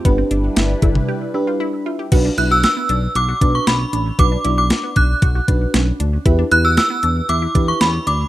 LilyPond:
<<
  \new Staff \with { instrumentName = "Synth bell" } { \time 4/4 \key g \mixolydian \tempo 4 = 116 r1 | \key b \minor r8 fis'''16 e'''16 e'''4 d'''8. cis'''16 b''4 | d'''8. d'''8. fis'''4 r4. | r8 fis'''16 e'''16 e'''4 d'''8. cis'''16 b''8 d'''8 | }
  \new Staff \with { instrumentName = "FM electric piano" } { \time 4/4 \key g \mixolydian << { r2. b''8 e''8 | \key b \minor r1 | r1 | r1 | } \\ { <d' g' b'>4. r4 <d' g' b'>4 r8 | <d' fis' b'>8 <d' fis' b'>4. r8 <d' fis' b'>4 r8 | <d' fis' b'>8 <d' fis' d''>4. r8 <d' fis' b'>4 r8 | <e' g' b'>8 <e' g' b'>4. r8 <e' g' b'>4 r8 | } >> }
  \new Staff \with { instrumentName = "Synth arpeggio sound" } { \time 4/4 \key g \mixolydian b16 c'16 d'8 e'8 e'8 g'8 e'16 f'16 e'8 f'16 g'16 | \key b \minor fis'16 d'16 e'16 fis'8 b16 d'8 fis'16 fis'16 d'8 cis'8 d'8 | fis'16 d'16 e'16 fis'8 b16 d'8 fis'16 fis'16 d'8 cis'8 d'8 | e'16 d'16 e'16 fis'8 b16 d'8 e'16 e'16 d'8 cis'8 d'8 | }
  \new Staff \with { instrumentName = "Analog synth pad" } { \time 4/4 \key g \mixolydian <g d' e' b'>1 | \key b \minor r1 | r1 | r1 | }
  \new Staff \with { instrumentName = "Analog synth bass" } { \clef bass \time 4/4 \key g \mixolydian g,,8 g,,8 g,,8 g,,8 r2 | \key b \minor b,,8 b,,8. r16 b,,8 b,,8 b,,8 b,,8 a,,8 | b,,8 b,,8. r16 b,,8 b,,8 b,,8 b,,8 d,8 | e,8 e,8. r16 e,8 e,8 e,8 e,8 d,8 | }
  \new DrumStaff \with { instrumentName = "Drums" } \drummode { \time 4/4 <hh bd>8 hh8 <hh sn>8 <cb hh bd>16 toml16 r4 r4 | <cymc hh bd>8 hh8 <hh sn>8 hh8 hh8 <hh bd>8 <hh sn>8 hh8 | <hh bd>8 hh8 <hh sn>8 <hh bd>8 <hh bd>8 <hh bd>8 <hh sn>8 hh8 | <hh bd>8 hh8 <hh sn>8 hh8 hh8 <hh bd>8 <hh sn>8 hh8 | }
>>